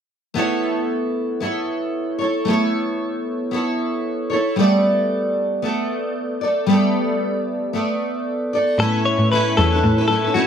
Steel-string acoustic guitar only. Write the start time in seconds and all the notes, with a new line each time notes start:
0.34 A3 B3 E4 A4
0.39 C#5
1.40 B3 E4 A4 C#5
2.19 E4 A4 C#5
2.45 A3 B3 E4
2.50 A4 C#5
3.51 B3 E4 A4 C#5
4.30 E4 A4 C#5
4.56 G3 A3 B3 A4
4.60 D5
5.62 A3 B3 A4 D5
6.41 A3 A4 D5
6.67 G3 A3 B3
6.71 A4 D5
7.73 A3 B3 A4 D5
8.53 A3 A4 D5
8.80 A3 C#4 E4 B4
9.33 A3 C#4 E4 B4
9.58 A3 C#4 E4 B4
9.72 C#4 E4 B4
9.98 C#4 E4 B4
10.10 A3 C#4 E4 B4
10.24 C#4 E4 B4
10.34 A3 C#4 E4 B4